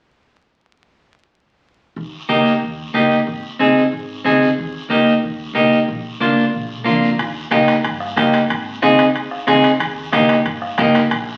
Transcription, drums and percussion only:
1.96 high conga, long guiro
2.29 high conga, short guiro
2.45 short guiro
2.61 high conga, long guiro
2.94 high conga, short guiro
3.10 short guiro
3.27 long guiro
3.60 high conga, short guiro
3.76 short guiro
3.92 high conga, long guiro
4.25 high conga, short guiro
4.42 short guiro
4.59 high conga, long guiro
4.91 high conga, short guiro
5.06 short guiro
5.23 high conga, long guiro
5.55 high conga, short guiro
5.72 short guiro
5.89 high conga, long guiro
6.20 high conga, short guiro
6.37 short guiro
6.53 high conga, long guiro
6.86 high conga, short guiro
7.02 short guiro
7.18 bombo low, high conga, high timbale, long guiro
7.51 bombo rim, high conga, high timbale, short guiro
7.68 high timbale, short guiro
7.84 high conga, high timbale, long guiro
8.00 bombo rim
8.17 bombo low, bombo rim, high conga, high timbale, short guiro
8.32 high timbale, short guiro
8.49 bombo low, high timbale, long guiro
8.82 bombo rim, high conga, high timbale, short guiro
8.98 high timbale, short guiro
9.14 high conga, high timbale, long guiro
9.31 bombo rim
9.47 bombo low, bombo rim, high conga, high timbale, short guiro
9.64 high timbale, short guiro
9.80 bombo low, high conga, high timbale, long guiro
10.12 bombo rim, high conga, high timbale, short guiro
10.29 high timbale, short guiro
10.45 high conga, high timbale, long guiro
10.62 bombo rim
10.78 bombo low, bombo rim, high conga, high timbale, short guiro
10.95 high timbale, short guiro
11.10 bombo low, high timbale, long guiro

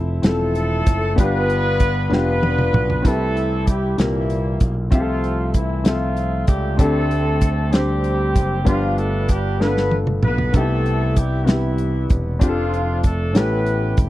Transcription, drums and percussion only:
0.23 snare, closed hi-hat
0.55 closed hi-hat
0.86 kick, closed hi-hat
1.18 kick, closed hi-hat
1.50 closed hi-hat
1.80 kick, closed hi-hat
2.13 snare
2.43 high tom
2.59 mid tom
2.74 mid tom
2.90 floor tom
3.05 kick, closed hi-hat
3.37 closed hi-hat
3.67 kick, closed hi-hat
3.98 snare, closed hi-hat
4.30 closed hi-hat
4.60 kick, closed hi-hat
4.92 kick, closed hi-hat
5.24 closed hi-hat
5.54 kick, closed hi-hat
5.85 snare, closed hi-hat
6.17 closed hi-hat
6.47 kick, closed hi-hat
6.79 kick, closed hi-hat
7.11 closed hi-hat
7.41 kick, closed hi-hat
7.73 snare, closed hi-hat
8.04 closed hi-hat
8.36 kick, closed hi-hat
8.67 kick, closed hi-hat
8.98 closed hi-hat
9.29 kick, closed hi-hat
9.61 snare
9.77 snare
9.91 high tom
10.07 mid tom
10.23 mid tom
10.38 floor tom
10.54 kick, closed hi-hat
10.86 closed hi-hat
11.16 kick, closed hi-hat
11.47 snare, closed hi-hat
11.78 closed hi-hat
12.10 kick, closed hi-hat
12.41 kick, closed hi-hat
12.74 closed hi-hat
13.03 kick, closed hi-hat
13.35 snare, closed hi-hat
13.66 closed hi-hat
13.97 kick, closed hi-hat

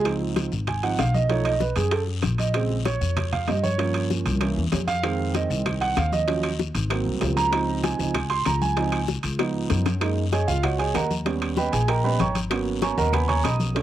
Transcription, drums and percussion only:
0.05 high bongo, high conga, high timbale, long guiro
0.21 high bongo, high conga
0.36 high bongo, high conga, high timbale, short guiro
0.52 short guiro
0.67 high bongo, high conga, low conga, high timbale, long guiro
0.83 high bongo, high conga, high timbale
0.99 high bongo, low bongo, high timbale, short guiro
1.14 high bongo, high conga, short guiro
1.30 high bongo, high conga, high timbale, long guiro
1.45 high bongo, high conga, high timbale
1.60 high bongo, high conga, short guiro
1.76 high conga, high timbale, short guiro
1.91 high bongo, high conga, high timbale, long guiro
2.07 high bongo, high conga
2.22 high bongo, low bongo, high conga, high timbale, short guiro
2.38 high bongo, high conga, high timbale, short guiro
2.54 high bongo, high conga, high timbale, long guiro
2.70 high bongo, high conga
2.85 high bongo, high conga, high timbale, short guiro
3.01 short guiro
3.17 high bongo, high conga, low conga, high timbale, long guiro
3.33 high bongo, high conga, low conga, high timbale
3.48 high bongo, low bongo, high timbale, low timbale, short guiro
3.64 high bongo, high conga, short guiro
3.79 high bongo, high conga, high timbale, long guiro
3.94 high bongo, high conga, high timbale
4.10 high bongo, high conga, short guiro
4.26 high conga, high timbale, short guiro
4.41 high bongo, high conga, high timbale, long guiro
4.57 high bongo
4.72 high bongo, low bongo, high conga, high timbale, low timbale, short guiro
4.88 high bongo, high conga, high timbale, short guiro
5.03 high bongo, high conga, high timbale, long guiro, claves
5.19 high bongo, high conga
5.35 high bongo, high conga, high timbale, short guiro
5.51 short guiro
5.66 high bongo, high conga, low conga, high timbale, long guiro, claves
5.82 high bongo, high conga, high timbale
5.97 high bongo, low bongo, high conga, high timbale, short guiro, claves
6.12 high bongo, high conga, short guiro
6.28 high bongo, high timbale, long guiro
6.43 high bongo, high conga, high timbale, claves
6.59 high bongo, high conga, short guiro
6.75 high conga, high timbale, short guiro
6.90 high bongo, high conga, high timbale, long guiro, claves
7.06 high bongo, high conga
7.21 high bongo, low bongo, high conga, high timbale, low timbale, short guiro
7.37 high bongo, high conga, high timbale, short guiro
7.53 high bongo, high conga, high timbale, long guiro, claves
7.68 high bongo, high conga
7.84 high bongo, high conga, high timbale, short guiro
7.99 short guiro
8.15 high bongo, high conga, low conga, high timbale, long guiro, claves
8.30 high bongo, high conga, high timbale
8.45 high bongo, low bongo, high conga, high timbale, short guiro, claves
8.61 high bongo, high conga, short guiro
8.77 high bongo, high conga, high timbale, long guiro
8.92 high bongo, high conga, high timbale, claves
9.08 high bongo, high conga, short guiro
9.23 high conga, high timbale, short guiro
9.39 high bongo, high conga, high timbale, long guiro, claves
9.54 high conga
9.70 low bongo, high conga, high timbale, short guiro
9.86 low bongo, high conga, high timbale, short guiro
10.01 high bongo, high conga, high timbale, long guiro, claves
10.17 high bongo, high conga
10.32 high bongo, high conga, high timbale, short guiro
10.48 short guiro
10.63 high bongo, high conga, low conga, high timbale, long guiro, claves
10.79 high bongo, high conga, high timbale
10.94 high bongo, low bongo, high conga, high timbale, low timbale, short guiro, claves
11.10 high bongo, high conga, short guiro
11.26 high bongo, high conga, high timbale, long guiro
11.42 high bongo, high conga, high timbale, claves
11.57 high bongo, high conga, short guiro
11.73 high conga, high timbale, short guiro
11.88 high bongo, high conga, high timbale, long guiro, claves
12.04 high bongo, high conga
12.20 high bongo, low bongo, high conga, high timbale, short guiro
12.35 high bongo, high conga, high timbale, short guiro
12.51 high bongo, high timbale, long guiro, claves
12.66 high bongo, high conga
12.82 high bongo, high conga, high timbale, short guiro
12.98 short guiro
13.13 high bongo, high conga, low conga, high timbale, long guiro, claves
13.29 high bongo, high conga, low conga, high timbale
13.45 high bongo, low bongo, high conga, high timbale, short guiro, claves
13.60 high bongo, high conga, short guiro
13.75 high bongo, high conga, high timbale, long guiro

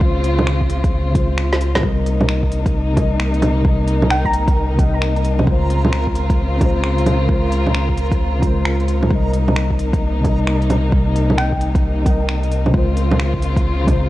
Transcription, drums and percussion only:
0.01 kick
0.24 closed hi-hat
0.39 low bongo
0.47 finger snap
0.61 kick
0.70 closed hi-hat
0.84 kick, closed hi-hat
1.15 kick, closed hi-hat
1.38 finger snap
1.53 snare, closed hi-hat
1.61 closed hi-hat
1.75 snare, closed hi-hat, low bongo
1.83 kick
2.06 closed hi-hat
2.21 low bongo
2.29 finger snap
2.43 kick
2.52 closed hi-hat
2.66 kick, closed hi-hat
2.97 kick, closed hi-hat, low bongo
3.20 finger snap
3.34 closed hi-hat
3.42 closed hi-hat, low bongo
3.65 kick
3.88 closed hi-hat
4.02 low bongo
4.10 finger snap
4.25 kick
4.33 closed hi-hat
4.48 kick, closed hi-hat
4.79 kick, closed hi-hat
5.02 finger snap
5.16 closed hi-hat
5.24 closed hi-hat
5.39 low bongo
5.47 kick
5.70 closed hi-hat
5.84 low bongo
5.93 finger snap
6.07 kick
6.15 closed hi-hat
6.30 kick, closed hi-hat
6.61 kick, closed hi-hat, low bongo
6.84 finger snap
6.98 closed hi-hat
7.06 closed hi-hat, low bongo
7.29 kick
7.52 closed hi-hat
7.67 low bongo
7.74 finger snap
7.89 kick
7.97 closed hi-hat
8.11 kick, closed hi-hat
8.42 kick, closed hi-hat
8.65 finger snap
8.80 closed hi-hat
8.88 closed hi-hat
9.03 low bongo
9.11 kick
9.34 closed hi-hat
9.48 low bongo
9.56 finger snap
9.71 kick
9.79 closed hi-hat
9.93 kick, closed hi-hat
10.24 kick, closed hi-hat, low bongo
10.47 finger snap
10.62 closed hi-hat
10.70 closed hi-hat, low bongo
10.92 kick
11.16 closed hi-hat
11.30 low bongo
11.38 finger snap
11.52 kick
11.61 closed hi-hat
11.75 kick, closed hi-hat
12.06 kick, closed hi-hat
12.29 finger snap
12.43 closed hi-hat
12.52 closed hi-hat
12.66 low bongo
12.74 kick
12.97 closed hi-hat
13.11 low bongo
13.20 finger snap
13.34 kick
13.42 closed hi-hat
13.57 kick, closed hi-hat
13.87 kick, closed hi-hat, low bongo

